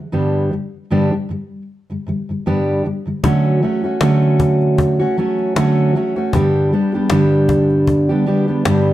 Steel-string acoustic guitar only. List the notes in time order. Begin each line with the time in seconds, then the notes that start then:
Already playing: D3 F#3
0.12 G2 D3 G3 B3 D4 G4
0.52 G2 D3 G3
0.90 G2 D3 G3 B3 D4 G4
1.12 G2 D3 G3
1.29 G2 D3 G3
1.90 G2 D3 G3
2.07 G2 D3 G3
2.29 G2 D3 G3
2.46 G2 D3 G3 B3 D4 G4
2.85 G2 D3 G3
3.06 G2 D3 G3
3.23 D3 F#3 A3 C#4 F#4
3.62 F#3 A3 C#4 F#4
3.84 A3 C#4 F#4
4.01 D3 F#3 A3 C#4 F#4
4.99 A3 C#4 F#4
5.17 F#3 A3 C#4 F#4
5.56 D3 F#3 A3 C#4 F#4
5.95 F#3 A3 C#4 F#4
6.16 A3 C#4 F#4
6.34 G2 D3 G3 B3 D4 G4
6.72 G3 B3 D4 G4
6.94 G3 B3 D4 G4
7.11 G2 D3 G3 B3 D4 G4
8.09 G3 B3 D4 G4
8.26 G3 B3 D4 G4
8.48 G3 B3 D4 G4
8.65 G2 D3 G3 B3 D4 G4